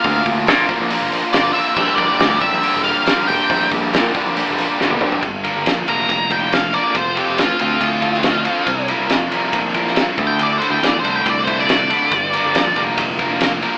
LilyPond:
<<
  \new Staff \with { instrumentName = "Lead electric guitar" } { \time 4/4 \key g \dorian \tempo 4 = 139 f''8 r2 r8 d''8 e''8 | e''8 d''4 e''4 f''4 g''8~ | g''8 r2. r8 | r4. bes''4 g''8 f''8 d''8 |
c''8 g'8 f'8 f'2~ f'8~ | f'8 r2 r8 \tuplet 3/2 { r4 g''8 } | \tuplet 3/2 { d''8 c''8 g''8 d''8 c''8 g''8 d''8 c''8 d''8~ } d''4~ | d''4. r2 r8 | }
  \new Staff \with { instrumentName = "Transistor combo organ" } { \time 4/4 \key g \dorian << { <bes' d'' bes''>1~ | <bes' d'' bes''>1~ | <bes' d'' bes''>1 | r1 |
r1 | r1 | r1 | r1 | } \\ { f'1 | g'1~ | g'1 | r1 |
r1 | r1 | r1 | r1 | } >> }
  \new Staff \with { instrumentName = "Overdriven electric guitar" } { \time 4/4 \key g \dorian <bes, d bes d' f'>4 <bes, d bes d' f'>8 <bes, d bes d' f'>8 <bes, d bes d' f'>4 <bes, d bes d' f'>8 <bes, d bes d' f'>8 | <bes, d g d' g'>4 <bes, d g d' g'>8 <bes, d g d' g'>8 <bes, d g d' g'>4 <bes, d g d' g'>8 <bes, d g d' g'>8 | <bes, d g d' g'>4 <bes, d g d' g'>8 <bes, d g d' g'>8 <bes, d g d' g'>4 <bes, d g d' g'>8 <bes, d g d' g'>8 | r8 <g bes d' bes'>8 r8 <g bes d' bes'>8 r8 <g bes d' bes'>8 r8 <g bes d' bes'>8 |
r8 <f c' f' a'>8 r8 <f c' f' a'>8 r8 <f c' f' a'>8 r8 <f c' f' a'>8 | r8 <g bes e' bes'>8 r8 <g bes e' bes'>8 r8 <g bes e' bes'>8 r8 <d a e' a'>8 | r8 <d a e' a'>8 r8 <d a e' a'>8 r8 <d a e' a'>8 r8 <d a e' a'>8 | r8 <g bes d' bes'>8 r8 <g bes d' bes'>8 r8 <g bes d' bes'>8 r8 <g bes d' bes'>8 | }
  \new Staff \with { instrumentName = "Distorted electric guitar" } { \clef bass \time 4/4 \key g \dorian <bes, f bes d' f'>4 <bes, f bes d' f'>8 <bes, f bes d' f'>8 <bes, f bes d' f'>4 <bes, f bes d' f'>8 <bes, f bes d' f'>8 | <bes, d g d' g'>4 <bes, d g d' g'>8 <bes, d g d' g'>8 <bes, d g d' g'>4 <bes, d g d' g'>8 <bes, d g d' g'>8 | <bes, d g d' g'>4 <bes, d g d' g'>8 <bes, d g d' g'>8 <bes, d g d' g'>4 <bes, d g d' g'>8 <bes, d g d' g'>8 | g,8 d8 f8 bes8 f8 d'8 bes8 f8 |
f8 c'8 f8 c'8 f8 f'8 c'8 f8 | c8 f8 f8 g8 f8 f'8 g8 d8 | d8 a8 d8 a8 d8 e'8 a8 d8 | g,8 d8 f8 bes8 f8 d'8 bes8 f8 | }
  \new Staff \with { instrumentName = "Picked electric bass" } { \clef bass \time 4/4 \key g \dorian d,8 d,8 bes,8 r16 bes,,8 g,,16 bes,,16 r16 g,,8 r8 | bes,,16 r16 bes,,16 r16 d,8 r16 bes,,16 r16 e,,8 r8. e,,16 r16 | bes,,8 bes,,8 bes,8 r16 bes,,8 e,,16 bes,,16 r16 e,,8 r8 | g,,8. g,,16 bes,,8 f,,8 f,,2 |
f,,8. f,,16 a,,8 d,8 d,2 | c,8. c,16 f,8 bes,,8 bes,,4. d,8~ | d,8. d,16 e,8 c,8 c,2 | g,,8. g,,16 bes,,8 f,,8 f,,2 | }
  \new DrumStaff \with { instrumentName = "Drums" } \drummode { \time 4/4 <hho bd>8 <hho bd>8 <hho sn>8 <hho bd>8 hho8 hho8 <hho sn>8 hho8 | <cymc bd>8 <hho bd>8 <hho sn>8 <hho bd>8 hho8 hho8 <hho sn>8 hho8 | <hho bd>8 <hho bd>8 <hho sn>8 <hho bd>8 hho8 hho8 sn16 tommh16 toml16 tomfh16 | <bd cymr>8 cymr8 <cymr sn>8 cymr8 <bd cymr>8 <bd cymr>8 <cymr sn>8 cymr8 |
<bd cymr>8 cymr8 <cymr sn>8 cymr8 <bd cymr>8 <bd cymr>16 sn16 <cymr sn>8 cymr8 | <bd cymr>8 cymr8 <cymr sn>8 cymr8 <bd cymr>8 <bd cymr>16 sn16 <cymr sn>8 <bd cymr>8 | cymr8 cymr8 <cymr sn>8 cymr8 <bd cymr>8 <bd cymr>16 sn16 <cymr sn>8 cymr8 | <bd cymr>8 cymr8 <cymr sn>8 cymr8 <bd cymr>8 <bd cymr>8 <cymr sn>8 cymr8 | }
>>